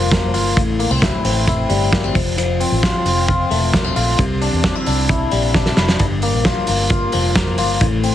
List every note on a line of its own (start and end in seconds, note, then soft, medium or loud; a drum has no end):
0.00 0.34 F1 medium
0.00 0.56 G2 medium
0.00 0.61 F3 medium
0.00 0.11 A#3 medium
0.00 0.33 F4 medium
0.11 0.61 A#3 medium
0.11 kick loud
0.11 snare loud
0.11 hi-hat pedal medium
0.11 ride medium
0.34 0.53 G1 medium
0.34 0.61 F4 medium
0.34 open hi-hat medium
0.56 0.86 A1 loud
0.56 2.20 A2 medium
0.56 kick loud
0.56 hi-hat pedal medium
0.56 ride medium
0.79 0.91 A#3 medium
0.79 open hi-hat medium
0.91 1.10 C2 medium
0.91 1.24 C4 medium
1.02 1.46 E4 medium
1.02 kick loud
1.02 snare loud
1.02 hi-hat pedal medium
1.02 ride medium
1.24 1.63 A1 loud
1.24 1.92 C4 medium
1.24 open hi-hat medium
1.47 2.20 E4 medium
1.47 kick loud
1.47 hi-hat pedal medium
1.47 ride medium
1.70 2.08 G1 loud
1.70 2.20 G3 medium
1.70 open hi-hat medium
1.92 2.04 A#3 medium
1.92 kick loud
1.92 snare loud
1.92 hi-hat pedal medium
1.92 ride medium
2.04 2.20 C4 medium
2.15 2.63 F1 medium
2.15 2.36 F3 medium
2.15 kick loud
2.15 open hi-hat medium
2.38 4.19 F3 medium
2.38 hi-hat pedal medium
2.38 ride medium
2.60 3.05 C4 medium
2.60 open hi-hat medium
2.72 2.91 A1 medium
2.83 3.27 F4 medium
2.83 kick loud
2.83 snare loud
2.83 hi-hat pedal medium
2.83 ride medium
3.05 3.44 F1 medium
3.05 3.73 C4 medium
3.05 open hi-hat medium
3.28 3.95 F4 medium
3.28 kick loud
3.28 hi-hat pedal medium
3.28 ride soft
3.51 3.90 E1 medium
3.51 4.23 A3 medium
3.51 open hi-hat medium
3.73 3.84 A#3 medium
3.73 kick loud
3.73 snare loud
3.73 hi-hat pedal medium
3.73 ride medium
3.84 4.23 C4 medium
3.96 4.16 A#1 medium
3.96 4.23 F4 medium
3.96 open hi-hat medium
4.19 4.48 C2 loud
4.19 6.00 C3 medium
4.19 kick loud
4.19 hi-hat pedal medium
4.19 ride medium
4.42 4.64 D4 medium
4.42 open hi-hat medium
4.53 4.72 E2 medium
4.64 4.75 D4 medium
4.64 kick loud
4.64 snare loud
4.64 ride medium
4.75 5.09 E4 medium
4.86 5.26 C2 medium
4.86 5.55 D4 medium
4.86 open hi-hat medium
5.09 5.76 E4 medium
5.09 kick loud
5.09 hi-hat pedal medium
5.09 ride medium
5.31 5.71 A#1 medium
5.31 6.49 G3 medium
5.31 open hi-hat medium
5.54 6.05 D4 medium
5.54 kick loud
5.54 snare medium
5.66 snare medium
5.77 5.97 F1 medium
5.77 6.05 E4 medium
5.77 snare medium
5.89 snare loud
5.99 6.35 G1 loud
5.99 7.81 G2 medium
5.99 kick loud
5.99 hi-hat pedal medium
5.99 ride medium
6.22 6.67 A#3 medium
6.22 open hi-hat medium
6.35 6.54 A#1 medium
6.45 6.90 F4 medium
6.45 kick loud
6.45 snare loud
6.45 hi-hat pedal medium
6.45 ride medium
6.67 7.07 G1 medium
6.67 7.35 A#3 medium
6.67 open hi-hat medium
6.90 7.57 F4 medium
6.90 kick loud
6.90 hi-hat pedal medium
6.90 ride soft
7.12 7.59 F1 medium
7.12 7.86 F3 medium
7.12 open hi-hat medium
7.35 7.86 A#3 medium
7.35 kick loud
7.35 snare loud
7.35 hi-hat pedal medium
7.35 ride medium
7.58 7.78 G1 medium
7.58 7.86 F4 medium
7.58 open hi-hat medium
7.81 8.10 A1 loud
7.81 8.15 A2 medium
7.81 kick loud
7.81 hi-hat pedal medium
7.81 ride medium
8.04 8.15 C4 medium
8.04 open hi-hat medium